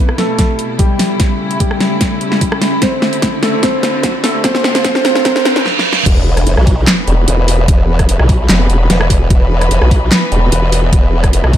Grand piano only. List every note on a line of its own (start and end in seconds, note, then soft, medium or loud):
0.00 0.11 B3 medium
0.00 0.11 B4 medium
0.18 0.71 A3 medium
0.18 0.71 A4 medium
0.79 1.53 G3 medium
0.79 1.53 G4 medium
1.60 2.74 G3 medium
1.60 2.74 G4 medium
2.82 3.35 C4 medium
2.82 3.35 C5 medium
3.43 3.61 A3 medium
3.43 3.61 A4 medium
3.63 4.16 C4 medium
3.63 4.16 C5 loud
4.24 4.42 A3 medium
4.24 4.42 A4 medium
4.44 4.83 C4 medium
4.44 4.83 C5 loud
4.84 5.24 C4 medium
4.84 5.24 C5 medium
5.25 5.44 C4 medium
5.25 5.44 C5 loud
5.45 5.64 C4 medium
5.45 5.64 C5 loud